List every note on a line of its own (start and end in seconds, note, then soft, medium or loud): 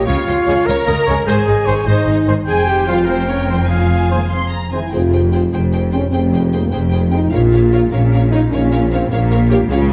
0.06 0.15 C#2 medium
0.06 0.15 C#3 medium
0.06 0.67 F4 loud
0.06 0.66 F4 medium
0.06 0.68 C#5 medium
0.06 0.26 C#5 medium
0.06 0.66 F5 medium
0.06 0.68 F5 medium
0.27 0.35 C#2 medium
0.27 0.35 C#3 medium
0.27 0.37 F4 medium
0.46 0.55 C#2 medium
0.46 0.54 C#3 medium
0.46 0.56 C#3 medium
0.46 0.54 G#3 medium
0.46 0.57 G#4 medium
0.46 0.54 C#5 medium
0.66 0.74 C#2 medium
0.66 0.76 C#3 loud
0.66 1.27 A#4 loud
0.66 1.26 A#4 loud
0.66 0.86 C#5 medium
0.66 0.87 F5 medium
0.66 1.27 A#5 loud
0.66 1.26 A#5 loud
0.87 0.95 C#2 medium
0.87 0.96 C#3 medium
0.87 0.97 F4 medium
0.87 1.06 D#5 medium
1.06 1.15 C#2 medium
1.06 1.14 C#3 medium
1.06 1.16 C#3 medium
1.06 1.14 G#3 medium
1.06 1.17 G#4 medium
1.06 1.15 C#5 medium
1.06 1.14 C#5 medium
1.27 1.35 G#1 loud
1.27 1.35 G#2 loud
1.27 1.86 G#4 medium
1.27 1.87 G#4 loud
1.27 1.36 C5 loud
1.27 1.47 C5 medium
1.27 1.86 G#5 loud
1.27 1.86 G#5 medium
1.46 1.55 G#1 medium
1.46 1.56 G#2 medium
1.46 1.56 D#4 medium
1.46 1.67 D#5 medium
1.66 1.74 G#1 medium
1.66 1.75 G#2 medium
1.66 1.74 D#3 medium
1.66 1.73 G#3 medium
1.66 1.76 G#4 medium
1.66 1.74 C5 medium
1.66 1.88 C#5 medium
1.86 1.94 G#1 medium
1.86 1.94 G#2 loud
1.86 2.26 D#4 medium
1.86 2.27 D#4 medium
1.86 2.26 C5 medium
1.86 2.06 C5 medium
1.86 2.26 D#5 medium
2.06 2.14 G#1 medium
2.06 2.15 G#2 medium
2.10 2.17 D#4 medium
2.26 2.35 G#1 medium
2.26 2.34 G#2 medium
2.26 2.33 D#3 medium
2.26 2.33 G#3 medium
2.26 2.36 G#4 medium
2.26 2.34 C5 medium
2.45 4.68 F1 medium
2.45 4.68 F2 medium
2.45 2.66 G#4 loud
2.45 3.07 C5 medium
2.45 3.04 G5 medium
2.45 2.66 G#5 loud
2.50 2.67 G#5 loud
2.67 2.87 G4 medium
2.67 2.88 G4 loud
2.67 2.76 G5 medium
2.67 2.78 G5 medium
2.87 2.95 F3 medium
2.87 2.95 G3 medium
2.87 3.08 F4 medium
2.87 3.07 F4 loud
2.87 2.94 C5 medium
2.87 2.97 F5 medium
2.87 3.08 F5 medium
3.05 3.28 C4 medium
3.05 3.28 C4 loud
3.05 3.68 A#4 medium
3.05 3.28 C5 medium
3.05 3.69 G5 medium
3.26 3.48 C#4 medium
3.26 3.49 C#4 medium
3.26 3.49 C#5 medium
3.48 3.56 F3 medium
3.48 3.56 G3 medium
3.48 3.69 C4 medium
3.48 3.61 C4 medium
3.48 3.56 C5 medium
3.48 3.70 C5 medium
3.69 4.31 F4 medium
3.69 4.11 F4 medium
3.69 4.60 G#4 medium
3.69 4.30 F5 medium
3.69 4.31 F5 medium
3.69 4.28 G#5 medium
4.10 4.18 D#3 medium
4.10 4.18 G#3 medium
4.10 4.21 A#3 medium
4.10 4.18 C5 medium
4.30 4.73 C4 medium
4.30 4.50 C6 medium
4.53 4.73 A#5 medium
4.72 4.80 D#3 medium
4.72 4.80 G#3 medium
4.72 4.93 E4 medium
4.72 4.80 C5 medium
4.72 4.94 G#5 medium
4.93 5.46 F1 medium
4.93 5.46 F2 medium
4.93 5.31 F4 medium
4.93 5.01 G#4 medium
4.93 5.01 C5 medium
4.93 5.01 G5 medium
5.13 5.21 G#4 medium
5.13 5.21 C5 medium
5.13 5.22 G5 medium
5.32 5.41 F4 loud
5.32 5.41 G#4 medium
5.32 5.42 C5 medium
5.32 5.41 G5 medium
5.52 6.06 F1 medium
5.52 6.06 F2 medium
5.52 5.92 C4 medium
5.52 5.60 G#4 medium
5.52 5.61 C5 medium
5.52 5.62 G5 medium
5.72 5.81 G#4 medium
5.72 5.81 C5 medium
5.72 5.80 G5 medium
5.92 6.13 C#4 loud
5.92 6.00 G#4 medium
5.92 6.00 C5 medium
5.92 6.02 G5 medium
6.10 6.66 F1 medium
6.10 6.65 F2 medium
6.10 6.51 C4 loud
6.10 6.21 G#4 medium
6.10 6.20 C5 medium
6.10 6.21 G5 medium
6.33 6.41 G#4 medium
6.33 6.41 C5 medium
6.33 6.43 G5 medium
6.52 6.72 A#3 medium
6.52 6.61 G#4 medium
6.52 6.61 C5 medium
6.52 6.62 G5 medium
6.70 7.25 F1 medium
6.70 7.25 F2 medium
6.70 7.11 C4 medium
6.70 6.80 G#4 medium
6.70 6.81 C5 medium
6.70 6.80 G5 medium
6.91 7.00 G#4 medium
6.91 7.01 C5 medium
6.91 6.99 G5 medium
7.12 7.32 D#4 loud
7.12 7.20 G#4 medium
7.12 7.21 C5 medium
7.12 7.20 G5 medium
7.31 7.85 A#1 medium
7.31 7.85 A#2 medium
7.31 7.70 F4 loud
7.31 7.40 A#4 medium
7.31 7.41 C#5 medium
7.31 7.39 F5 medium
7.51 7.59 A#4 medium
7.51 7.61 C#5 medium
7.51 7.61 F5 medium
7.71 7.80 F4 loud
7.71 7.80 A#4 medium
7.71 7.80 C#5 medium
7.71 7.81 F5 medium
7.91 8.44 A#1 medium
7.91 8.44 A#2 medium
7.91 8.31 C#4 loud
7.91 7.99 A#4 medium
7.91 8.01 C#5 medium
7.91 8.01 F5 medium
8.11 8.19 A#4 medium
8.11 8.22 C#5 medium
8.11 8.21 F5 medium
8.32 8.41 D#4 loud
8.32 8.40 A#4 medium
8.32 8.41 C#5 medium
8.32 8.42 F5 medium
8.51 9.04 A#1 medium
8.51 9.04 A#2 medium
8.51 8.90 C#4 loud
8.51 8.60 A#4 medium
8.51 8.61 C#5 medium
8.51 8.61 F5 medium
8.72 8.80 A#4 medium
8.72 8.80 C#5 medium
8.72 8.80 F5 medium
8.90 9.10 C4 loud
8.90 8.99 A#4 medium
8.90 9.01 C#5 medium
8.90 9.00 F5 medium
9.11 9.63 A#1 medium
9.11 9.64 A#1 medium
9.11 9.63 A#2 medium
9.11 9.30 A#3 loud
9.11 9.19 A#4 medium
9.11 9.20 C#5 medium
9.11 9.21 F5 medium
9.32 9.39 A#4 medium
9.32 9.39 C#5 medium
9.32 9.40 F5 medium
9.50 9.59 G4 loud
9.50 9.59 A#4 medium
9.50 9.59 C#5 medium
9.50 9.60 F5 medium
9.70 9.93 C#2 loud
9.70 9.93 C#3 loud
9.70 9.93 F4 loud
9.70 9.78 G#4 medium
9.70 9.79 C#5 medium
9.70 9.80 F5 medium
9.89 9.93 G#4 medium